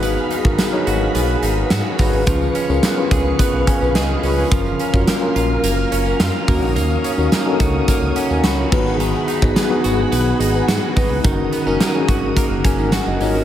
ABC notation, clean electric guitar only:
X:1
M:4/4
L:1/16
Q:1/4=107
K:F#
V:1 name="Clean electric guitar"
B,2 D2 B,2 F2 B,2 D2 F2 D2 | E,2 C2 B,2 G2 B,2 C2 G2 C2 | E,2 C2 A,2 E2 A,2 C2 E2 A,2 | A,2 C2 A,2 F2 A,2 C2 F2 D,2 |
D,2 D2 B,2 F2 B,2 D2 F2 D2 | D,2 B, C A,2 F2 A,2 C2 F2 C2 |]